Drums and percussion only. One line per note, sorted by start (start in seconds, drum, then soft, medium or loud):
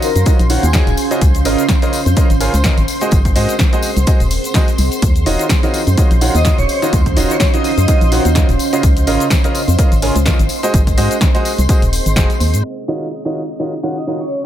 0.02 open hi-hat medium
0.02 tambourine loud
0.15 closed hi-hat soft
0.15 tambourine soft
0.15 shaker medium
0.26 kick loud
0.26 closed hi-hat medium
0.26 tambourine medium
0.26 shaker medium
0.39 closed hi-hat soft
0.39 tambourine soft
0.39 shaker soft
0.50 open hi-hat loud
0.50 tambourine loud
0.63 closed hi-hat soft
0.63 tambourine soft
0.63 shaker medium
0.73 kick loud
0.73 snare loud
0.73 closed hi-hat medium
0.73 tambourine soft
0.73 shaker medium
0.87 closed hi-hat soft
0.87 tambourine soft
0.87 shaker soft
0.97 open hi-hat loud
0.97 tambourine loud
1.11 closed hi-hat soft
1.11 tambourine soft
1.11 shaker medium
1.21 kick loud
1.21 closed hi-hat medium
1.21 tambourine medium
1.21 shaker medium
1.34 closed hi-hat soft
1.34 tambourine soft
1.34 shaker soft
1.45 open hi-hat loud
1.45 tambourine loud
1.58 closed hi-hat soft
1.58 tambourine soft
1.58 shaker medium
1.69 kick loud
1.69 snare loud
1.69 closed hi-hat medium
1.69 tambourine medium
1.69 shaker medium
1.82 closed hi-hat soft
1.82 tambourine soft
1.82 shaker soft
1.93 open hi-hat medium
1.93 tambourine loud
2.06 closed hi-hat soft
2.06 tambourine soft
2.06 shaker medium
2.16 kick loud
2.16 closed hi-hat medium
2.16 tambourine medium
2.16 shaker medium
2.30 closed hi-hat soft
2.30 tambourine soft
2.30 shaker soft
2.40 open hi-hat loud
2.40 tambourine loud
2.54 closed hi-hat soft
2.54 tambourine soft
2.54 shaker medium
2.64 kick loud
2.64 snare loud
2.64 closed hi-hat medium
2.64 tambourine medium
2.64 shaker medium
2.77 closed hi-hat soft
2.77 tambourine soft
2.77 shaker soft
2.88 open hi-hat loud
2.88 tambourine loud
3.01 closed hi-hat soft
3.01 tambourine soft
3.01 shaker medium
3.11 kick loud
3.11 closed hi-hat medium
3.11 tambourine medium
3.11 shaker medium
3.25 kick medium
3.25 closed hi-hat soft
3.25 tambourine soft
3.25 shaker soft
3.36 open hi-hat loud
3.36 tambourine loud
3.49 closed hi-hat soft
3.49 tambourine soft
3.49 shaker medium
3.59 kick loud
3.59 snare loud
3.59 closed hi-hat medium
3.59 tambourine soft
3.59 shaker medium
3.73 closed hi-hat soft
3.73 tambourine soft
3.73 shaker soft
3.82 open hi-hat medium
3.82 tambourine loud
3.96 closed hi-hat soft
3.96 tambourine soft
3.96 shaker medium
4.07 kick loud
4.07 closed hi-hat medium
4.07 tambourine medium
4.07 shaker medium
4.20 closed hi-hat soft
4.20 tambourine soft
4.20 shaker soft
4.31 open hi-hat loud
4.31 tambourine medium
4.44 closed hi-hat soft
4.44 tambourine soft
4.44 shaker medium
4.54 kick loud
4.54 snare loud
4.54 closed hi-hat medium
4.54 tambourine medium
4.54 shaker medium
4.68 closed hi-hat soft
4.68 tambourine soft
4.68 shaker soft
4.78 open hi-hat loud
4.78 tambourine medium
4.91 closed hi-hat soft
4.91 tambourine soft
4.91 shaker medium
5.02 kick loud
5.02 closed hi-hat medium
5.02 tambourine soft
5.02 shaker medium
5.16 closed hi-hat soft
5.16 tambourine soft
5.16 shaker soft
5.26 open hi-hat loud
5.26 tambourine medium
5.39 closed hi-hat soft
5.39 tambourine soft
5.39 shaker medium
5.49 kick loud
5.49 snare loud
5.49 closed hi-hat medium
5.49 tambourine medium
5.49 shaker medium
5.63 closed hi-hat soft
5.63 tambourine soft
5.63 shaker soft
5.74 open hi-hat medium
5.74 tambourine medium
5.87 closed hi-hat soft
5.87 tambourine soft
5.87 shaker medium
5.97 kick loud
5.97 closed hi-hat medium
5.97 tambourine medium
5.97 shaker medium
6.11 closed hi-hat soft
6.11 tambourine soft
6.11 shaker soft
6.21 open hi-hat loud
6.21 tambourine loud
6.35 closed hi-hat soft
6.35 tambourine soft
6.35 shaker medium
6.45 kick loud
6.45 snare loud
6.45 closed hi-hat medium
6.45 tambourine medium
6.45 shaker medium
6.58 closed hi-hat soft
6.58 tambourine soft
6.58 shaker soft
6.69 open hi-hat medium
6.69 tambourine medium
6.82 closed hi-hat soft
6.82 tambourine soft
6.82 shaker medium
6.93 kick loud
6.93 closed hi-hat medium
6.93 tambourine soft
6.93 shaker medium
7.06 kick medium
7.06 closed hi-hat soft
7.06 tambourine soft
7.06 shaker soft
7.17 open hi-hat loud
7.17 tambourine medium
7.30 closed hi-hat soft
7.30 tambourine soft
7.30 shaker medium
7.40 kick loud
7.40 snare loud
7.40 closed hi-hat medium
7.40 tambourine soft
7.40 shaker medium
7.54 closed hi-hat soft
7.54 tambourine soft
7.54 shaker soft
7.64 open hi-hat medium
7.64 tambourine medium
7.78 closed hi-hat soft
7.78 tambourine soft
7.78 shaker medium
7.88 kick loud
7.88 closed hi-hat medium
7.88 tambourine soft
7.88 shaker medium
8.01 closed hi-hat soft
8.01 tambourine soft
8.01 shaker soft
8.12 open hi-hat loud
8.12 tambourine medium
8.25 closed hi-hat soft
8.25 tambourine soft
8.25 shaker medium
8.35 kick loud
8.35 snare loud
8.35 closed hi-hat medium
8.35 tambourine soft
8.35 shaker medium
8.49 closed hi-hat soft
8.49 tambourine soft
8.49 shaker soft
8.59 open hi-hat medium
8.59 tambourine loud
8.73 closed hi-hat soft
8.73 tambourine soft
8.73 shaker medium
8.83 kick loud
8.83 closed hi-hat loud
8.83 tambourine medium
8.83 shaker medium
8.97 closed hi-hat soft
8.97 tambourine soft
8.97 shaker soft
9.07 open hi-hat loud
9.07 tambourine medium
9.20 closed hi-hat soft
9.20 tambourine soft
9.20 shaker medium
9.30 kick loud
9.30 snare loud
9.30 closed hi-hat medium
9.30 tambourine soft
9.30 shaker medium
9.44 closed hi-hat soft
9.44 tambourine soft
9.44 shaker soft
9.55 open hi-hat medium
9.55 tambourine medium
9.68 closed hi-hat soft
9.68 tambourine soft
9.68 shaker medium
9.79 kick loud
9.79 closed hi-hat medium
9.79 tambourine medium
9.79 shaker medium
9.92 closed hi-hat soft
9.92 tambourine soft
9.92 shaker soft
10.02 open hi-hat loud
10.02 tambourine medium
10.16 closed hi-hat soft
10.16 tambourine soft
10.16 shaker medium
10.26 kick loud
10.26 snare loud
10.26 closed hi-hat loud
10.26 tambourine soft
10.26 shaker medium
10.39 closed hi-hat soft
10.39 tambourine soft
10.39 shaker soft
10.49 open hi-hat medium
10.49 tambourine medium
10.63 closed hi-hat soft
10.63 tambourine soft
10.63 shaker medium
10.74 kick loud
10.74 closed hi-hat loud
10.74 tambourine medium
10.74 shaker medium
10.87 kick medium
10.87 closed hi-hat soft
10.87 tambourine soft
10.87 shaker soft
10.98 open hi-hat loud
10.98 tambourine medium
11.11 closed hi-hat soft
11.11 tambourine soft
11.11 shaker medium
11.21 kick loud
11.21 snare loud
11.21 closed hi-hat loud
11.21 tambourine soft
11.21 shaker medium
11.34 closed hi-hat soft
11.34 tambourine soft
11.34 shaker soft
11.45 open hi-hat medium
11.45 tambourine medium
11.58 closed hi-hat soft
11.58 tambourine soft
11.58 shaker medium
11.69 kick loud
11.69 closed hi-hat loud
11.69 tambourine medium
11.69 shaker medium
11.82 closed hi-hat soft
11.82 tambourine soft
11.82 shaker soft
11.93 open hi-hat loud
11.93 tambourine medium
12.06 closed hi-hat soft
12.06 tambourine soft
12.06 shaker medium
12.16 kick loud
12.16 snare loud
12.16 closed hi-hat medium
12.16 tambourine medium
12.16 shaker medium
12.30 closed hi-hat soft
12.30 tambourine soft
12.30 shaker soft
12.40 open hi-hat medium
12.40 tambourine medium
12.53 closed hi-hat soft
12.53 tambourine soft
12.53 shaker medium